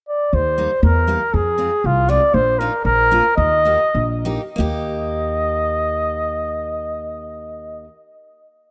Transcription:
0.08 D5
0.33 D#2 C5
0.58 G3 A#3 D#4
0.83 E2 A#4
1.07 G3 A#3 D#4
1.34 F2 G#4
1.58 G#3 C4 F4
1.84 C2 F4
2.09 G#3 C4 F4 D5
2.34 A#1 C5
2.59 A#3 D#4 F4 A#4
2.85 A#1 A#4
3.11 A#3 D4 F4
3.37 D#2 D#5
3.65 A#3 D#4 G4
3.95 A#1
4.25 A#3 D#4 G4
4.56 D#2 A#3 D#4 D#5
4.60 G4

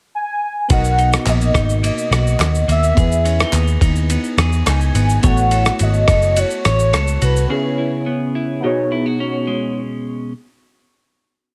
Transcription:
0.15 G#5
0.68 B1 B2 B3 D#4 F#4 A#4 F#5, kick, ride, shaker
0.73 D#5
0.84 shaker
0.98 D#4, ride, shaker
1.13 cross-stick, shaker
1.26 A#1 A#3 D#5, clap, ride, shaker
1.41 shaker
1.54 G#1 D#4, kick, cross-stick, ride, shaker
1.69 shaker
1.83 A#3 D#5, ride, shaker
1.98 shaker
2.11 B1 F#4, cross-stick, ride, shaker
2.27 shaker
2.39 D#2, cross-stick, clap, ride, shaker
2.55 shaker
2.68 D#2 A#3 E5, ride, shaker
2.83 shaker
2.95 E2 B3 E4 G#4, kick, ride, shaker
3.00 B4
3.12 shaker
3.25 C#4, ride, shaker
3.40 D#4, cross-stick, shaker
3.53 D#2 B3, clap, ride, shaker
3.68 shaker
3.81 D#2 D#4, kick, ride, shaker
3.96 shaker
4.10 B3, ride, shaker
4.24 shaker
4.38 E2 G#4, cross-stick, ride, shaker
4.53 shaker
4.66 C#2 D#4 G#5, cross-stick, clap, ride, shaker
4.81 shaker
4.94 G#1 B3, ride, shaker
5.09 shaker
5.22 A1 A3 B3 E4 F#4 A4 C#5, kick, ride, shaker
5.26 C#5 F#5
5.37 shaker
5.51 A4, ride, shaker
5.65 cross-stick, shaker
5.79 G#1 F#4 D#5, ride, shaker
5.94 shaker
6.08 F#1 A4, kick, cross-stick, ride, shaker
6.22 shaker
6.37 F#4 C#5, ride, shaker
6.51 shaker
6.65 A1 C#5, cross-stick, ride, shaker
6.79 shaker
6.93 C#2 A4, cross-stick, ride, shaker
7.07 shaker
7.22 C2 F#4 B4, ride, shaker
7.36 shaker
7.47 C#3 B3 C#4 E4 G#4
7.53 C#5
7.78 E4
8.06 B3
8.35 E4
8.60 B2 B3 D#4 F#4 G#4
8.66 C#5
8.92 E4
9.06 F#4
9.20 C#4
9.47 G#3

